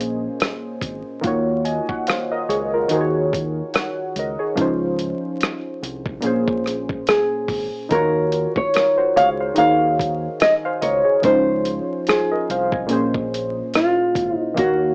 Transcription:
Already playing: fingered electric bass A#1, synth keys A#2 A#3 C#4 G#4 C5 D#5 G#5, nylon-string guitar F4
0.00 closed hi-hat
0.40 cross-stick, closed hi-hat
0.81 fingered electric bass G#1, kick, closed hi-hat
1.21 fingered electric bass D#2, synth keys D#3 A#3 F4, kick, closed hi-hat
1.25 synth keys F#4 C#5
1.64 synth keys D#5 G#5, closed hi-hat
1.89 synth keys C#5 F#5, kick
2.07 synth keys C5 F5, cross-stick, closed hi-hat
2.31 synth keys A#4 D#5
2.49 fingered electric bass C#2, synth keys G#4 C#5, closed hi-hat
2.74 synth keys F4 A#4
2.88 fingered electric bass D#2, synth keys D#3 D#4 F#4 G#4, closed hi-hat
2.93 synth keys A#4 C5
3.01 synth keys C#5
3.33 kick, closed hi-hat
3.74 synth keys C#5 F#5, cross-stick, closed hi-hat
4.16 fingered electric bass C#2, synth keys A#4 D#5, closed hi-hat
4.39 synth keys G#4 C#5
4.55 fingered electric bass C#2, synth keys F3 C#4 D#4, kick, closed hi-hat
4.60 synth keys F4 C5
4.99 closed hi-hat
5.41 cross-stick, closed hi-hat
5.83 fingered electric bass C2, closed hi-hat
6.06 kick
6.21 fingered electric bass A#1, synth keys A#2 A#3 C#4, closed hi-hat
6.25 synth keys G#4 C5
6.48 kick
6.66 cross-stick, closed hi-hat
6.89 kick
7.07 nylon-string guitar G#4, cross-stick, closed hi-hat
7.48 fingered electric bass G#1, kick, open hi-hat
7.89 fingered electric bass D#2, synth keys D#3 D#4 F4, nylon-string guitar A#4, kick, closed hi-hat
7.93 synth keys F#4 C#5
8.32 closed hi-hat
8.56 nylon-string guitar C#5, kick
8.74 synth keys F4 A#4, cross-stick, closed hi-hat
8.98 synth keys F#4 C5
9.16 fingered electric bass C#2, synth keys G#4 C#5, nylon-string guitar F5, closed hi-hat
9.40 synth keys C5 F5
9.54 fingered electric bass D#2, synth keys D#3 D#4 F#4 G#4, closed hi-hat
9.58 synth keys A#4 C#5, nylon-string guitar F5
10.00 kick, closed hi-hat
10.40 synth keys D#5 G#5, nylon-string guitar D#5, cross-stick, closed hi-hat
10.65 synth keys C5 F5
10.82 fingered electric bass C#2, synth keys A#4 D#5, nylon-string guitar C#5, closed hi-hat
11.05 synth keys G#4 C#5
11.22 fingered electric bass C#2, synth keys F3 C#4 D#4, nylon-string guitar C5, kick, closed hi-hat
11.27 synth keys F4 C5
11.65 closed hi-hat
12.07 synth keys F4 C5, nylon-string guitar G#4, cross-stick, closed hi-hat
12.32 synth keys A#4 D#5
12.49 fingered electric bass C2, synth keys C5 F5, closed hi-hat
12.72 synth keys D#5 G#5, kick
12.87 synth keys A#2 A#3 C#4, closed hi-hat
12.91 fingered electric bass A#1, synth keys G#4 C5
13.14 kick
13.34 closed hi-hat
13.73 nylon-string guitar F4, cross-stick, closed hi-hat
14.15 fingered electric bass G#1, kick, closed hi-hat
14.37 nylon-string guitar D#4
14.54 fingered electric bass D#2, synth keys D#3 A#3 F5, kick, closed hi-hat
14.58 synth keys F#4 C#5, nylon-string guitar F#4

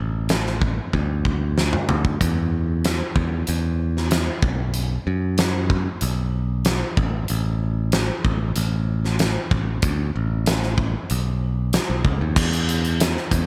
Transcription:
0.00 picked electric bass A1
0.29 snare, closed hi-hat
0.47 snare
0.61 kick
0.93 picked electric bass D2, kick
1.25 kick
1.58 snare
1.73 mid tom
1.89 picked electric bass D2, floor tom
2.05 kick
2.21 picked electric bass E2, kick, closed hi-hat
2.85 snare, closed hi-hat
3.16 picked electric bass E2, kick
3.47 picked electric bass E2, closed hi-hat
3.97 snare
4.11 snare, closed hi-hat
4.42 picked electric bass B1, kick
4.74 closed hi-hat
5.07 picked electric bass F#2
5.38 snare, closed hi-hat
5.70 kick
6.01 picked electric bass B1, closed hi-hat
6.65 snare, closed hi-hat
6.97 picked electric bass A1, kick
7.28 picked electric bass A1, closed hi-hat
7.92 snare, closed hi-hat
8.25 picked electric bass A1, kick
8.56 picked electric bass A1, closed hi-hat
9.05 snare
9.19 snare, closed hi-hat
9.51 picked electric bass A1, kick
9.82 picked electric bass D2, kick, closed hi-hat
10.16 picked electric bass A1
10.46 snare, closed hi-hat
10.63 snare
10.78 kick
11.10 picked electric bass B1, closed hi-hat
11.73 snare, closed hi-hat
11.90 picked electric bass B1
12.05 picked electric bass C#2, kick
12.21 picked electric bass D#2
12.36 picked electric bass E2, kick, crash
12.53 closed hi-hat
12.69 closed hi-hat
12.85 closed hi-hat
13.00 snare, closed hi-hat
13.17 snare
13.31 picked electric bass E2, kick, closed hi-hat

